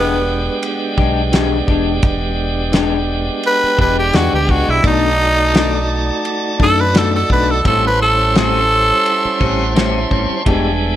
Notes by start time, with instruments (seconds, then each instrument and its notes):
Already playing: fingered electric bass E1, clean electric guitar E3 G#3 D4 G4, tonewheel organ G#3 B3 D4 G4, horn section G#3 D5 G5, tenor saxophone B3
0.63 ride bell
0.98 fingered electric bass B1, clean electric guitar G#3 D4 G4, kick
1.32 clean electric guitar E3 G#3 D4 G4, snare, ride bell
1.67 fingered electric bass E1, clean electric guitar G#3 D4 G4, kick
2.03 fingered electric bass E1, kick, ride bell
2.72 clean electric guitar E3 G#3 D4 G4, snare, ride bell
3.43 tenor saxophone B4, ride bell
3.63 muted fingered electric bass stroke
3.78 fingered electric bass E1, clean electric guitar G#3 D4 G4, tenor saxophone B4, kick
3.99 tenor saxophone G4
4.13 fingered electric bass E2, clean electric guitar E3 G#3 D4 G4, tenor saxophone F#4, snare, ride bell
4.33 fingered electric bass D2, tenor saxophone G4
4.47 fingered electric bass C#2, clean electric guitar G#3 D4 G4, tenor saxophone F#4, kick
4.68 fingered electric bass B1, tenor saxophone E4
4.83 fingered electric bass B1, clean electric guitar B2 D#3 A3 D4, tonewheel organ A3 D#4 F#4 D5, horn section D#4 A5, kick, ride bell
4.87 tenor saxophone D#4
5.53 clean electric guitar B2 D#3 A3 D4, snare, ride bell
6.25 ride bell
6.59 fingered electric bass F#2, clean electric guitar D#3 A3 D4, kick
6.63 tenor saxophone A4
6.81 tenor saxophone B4
6.94 clean electric guitar B2 D#3 A3 D4, snare, ride bell
6.98 tenor saxophone A4
7.16 tenor saxophone A4
7.30 fingered electric bass B1, clean electric guitar D#3 A3 D4, tenor saxophone B4, kick
7.51 tenor saxophone A4
7.64 fingered electric bass A1, clean electric guitar A2 G3 C4 C#4, tonewheel organ G3 C#4 E4 C5, horn section C#4 A5 C6, tenor saxophone A4, kick, ride bell
7.87 tenor saxophone B4
8.02 tenor saxophone A4
8.35 clean electric guitar A2 G3 C4 C#4, tenor saxophone A4, snare, ride bell
9.06 ride bell
9.25 muted fingered electric bass stroke
9.39 fingered electric bass A1, clean electric guitar G3 C4 C#4, tonewheel organ F#5, kick
9.75 clean electric guitar A2 G3 C4 C#4, tonewheel organ E5, snare, ride bell
10.10 fingered electric bass A1, clean electric guitar G3 C4 C#4, tonewheel organ C#5, kick
10.45 fingered electric bass E1, clean electric guitar E3 G#3 D4 G4, tonewheel organ G3 G#3 B3 D4, horn section E5 G#5, kick, ride bell